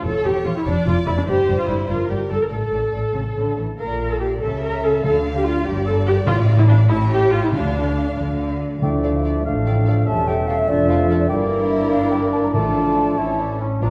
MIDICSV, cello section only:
0, 0, Header, 1, 2, 480
1, 0, Start_track
1, 0, Key_signature, -1, "minor"
1, 0, Tempo, 414365
1, 53, Time_signature, 6, 3, 24, 8
1, 7734, Tempo, 428878
1, 10134, Tempo, 412371
1, 13974, Tempo, 424028
1, 15989, End_track
2, 0, Start_track
2, 0, Title_t, "Cello section"
2, 0, Program_c, 0, 48
2, 55, Note_on_c, 0, 40, 58
2, 147, Note_off_c, 0, 40, 0
2, 294, Note_on_c, 0, 40, 57
2, 387, Note_off_c, 0, 40, 0
2, 525, Note_on_c, 0, 40, 61
2, 618, Note_off_c, 0, 40, 0
2, 769, Note_on_c, 0, 41, 60
2, 862, Note_off_c, 0, 41, 0
2, 1005, Note_on_c, 0, 41, 56
2, 1098, Note_off_c, 0, 41, 0
2, 1242, Note_on_c, 0, 41, 65
2, 1335, Note_off_c, 0, 41, 0
2, 1473, Note_on_c, 0, 43, 65
2, 1566, Note_off_c, 0, 43, 0
2, 1715, Note_on_c, 0, 43, 61
2, 1808, Note_off_c, 0, 43, 0
2, 1952, Note_on_c, 0, 43, 62
2, 2045, Note_off_c, 0, 43, 0
2, 2195, Note_on_c, 0, 43, 62
2, 2288, Note_off_c, 0, 43, 0
2, 2435, Note_on_c, 0, 43, 50
2, 2527, Note_off_c, 0, 43, 0
2, 2680, Note_on_c, 0, 43, 50
2, 2773, Note_off_c, 0, 43, 0
2, 2917, Note_on_c, 0, 45, 45
2, 3009, Note_off_c, 0, 45, 0
2, 3160, Note_on_c, 0, 45, 47
2, 3252, Note_off_c, 0, 45, 0
2, 3400, Note_on_c, 0, 45, 41
2, 3493, Note_off_c, 0, 45, 0
2, 3639, Note_on_c, 0, 49, 51
2, 3732, Note_off_c, 0, 49, 0
2, 3888, Note_on_c, 0, 50, 44
2, 4133, Note_off_c, 0, 50, 0
2, 4138, Note_on_c, 0, 52, 45
2, 4231, Note_off_c, 0, 52, 0
2, 4391, Note_on_c, 0, 46, 57
2, 5031, Note_off_c, 0, 46, 0
2, 5125, Note_on_c, 0, 49, 59
2, 5761, Note_off_c, 0, 49, 0
2, 5839, Note_on_c, 0, 50, 61
2, 6467, Note_off_c, 0, 50, 0
2, 6561, Note_on_c, 0, 43, 81
2, 7179, Note_off_c, 0, 43, 0
2, 7262, Note_on_c, 0, 45, 89
2, 7888, Note_off_c, 0, 45, 0
2, 7971, Note_on_c, 0, 45, 90
2, 8599, Note_off_c, 0, 45, 0
2, 8691, Note_on_c, 0, 50, 65
2, 9327, Note_off_c, 0, 50, 0
2, 9412, Note_on_c, 0, 50, 60
2, 10052, Note_off_c, 0, 50, 0
2, 10143, Note_on_c, 0, 38, 50
2, 10751, Note_off_c, 0, 38, 0
2, 10876, Note_on_c, 0, 45, 52
2, 11473, Note_off_c, 0, 45, 0
2, 11590, Note_on_c, 0, 40, 60
2, 12186, Note_off_c, 0, 40, 0
2, 12306, Note_on_c, 0, 41, 76
2, 12895, Note_off_c, 0, 41, 0
2, 13010, Note_on_c, 0, 43, 69
2, 14402, Note_off_c, 0, 43, 0
2, 14445, Note_on_c, 0, 45, 55
2, 15159, Note_off_c, 0, 45, 0
2, 15172, Note_on_c, 0, 45, 44
2, 15658, Note_off_c, 0, 45, 0
2, 15890, Note_on_c, 0, 46, 53
2, 15981, Note_off_c, 0, 46, 0
2, 15989, End_track
0, 0, End_of_file